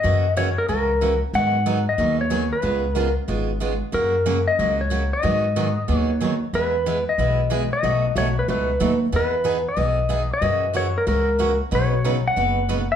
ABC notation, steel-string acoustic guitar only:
X:1
M:4/4
L:1/8
Q:"Swing" 1/4=185
K:B
V:1 name="Steel-string acoustic guitar"
[C,E,A,CF] z [C,E,A,CF] z [C,E,A,CF] z [C,E,A,CF] z | [D,F,B,DG] z [D,F,B,DG] z [D,F,B,DG] z [D,F,B,DG] z | [C,G,B,^EG] z [C,G,B,EG] z [C,G,B,EG] z [C,G,B,EG] z | [C,F,A,CF] z [C,F,A,CF] z [C,F,A,CF] z [C,F,A,CF] z |
[D,F,B,DG] z [D,F,B,DG] z [D,F,B,DG] z [D,F,B,DG] z | [E,G,B,EG] z [E,G,B,EG] z [E,G,B,EG] z [E,G,B,EG] z | [B,,F,=A,DF] z [B,,F,A,DF] z [B,,F,A,DF] z [B,,F,A,DF] z | [E,B,DG] z [E,B,DG] z [E,B,DG] z [E,B,DG] z |
[C,E,A,CF] z [C,E,A,CF] z [C,E,A,CF] z [C,E,A,CF] z | [B,,C,F,B,DB] z [B,,C,F,B,DB] z [B,,C,F,B,DB] z [B,,C,F,B,DB] z |]